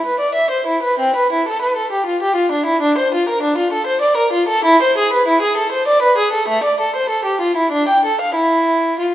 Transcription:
violin
0.06 B4
0.20 D5
0.35 E5
0.51 C5
0.67 E4
0.83 B4
0.99 C4
1.16 B4
1.33 E4
1.48 A4
1.62 B4
1.77 A4
1.92 G4
2.06 F4
2.22 G4
2.36 F4
2.52 D4
2.66 E4
2.82 D4
2.98 C5
3.14 F4
3.29 A#4
3.43 D4
3.58 F4
3.73 A4
3.87 C5
4.01 D5
4.17 A#4
4.33 F4
4.49 A4
4.65 E4
4.82 C5
4.98 G#4
5.13 B4
5.28 E4
5.42 G#4
5.57 A4
5.72 C5
5.88 D5
6.02 B4
6.18 G#4
6.33 A4
6.49 A3
6.64 D5
6.81 A4
6.96 C5
7.10 A4
7.25 G4
7.41 F4
7.56 E4
7.72 D4
7.88 G5
8.06 A4
8.21 F5
8.36 E4
8.99 F4

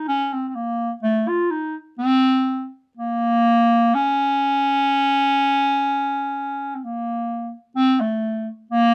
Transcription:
clarinet
0.08 C#4
0.33 C4
0.49 C4
0.55 A#3
1.03 A3
1.28 F4
1.51 D#4
1.99 C4
2.97 A#3
3.95 C#4
6.75 C4
6.84 A#3
7.75 C4
8.01 A3
8.71 A#3

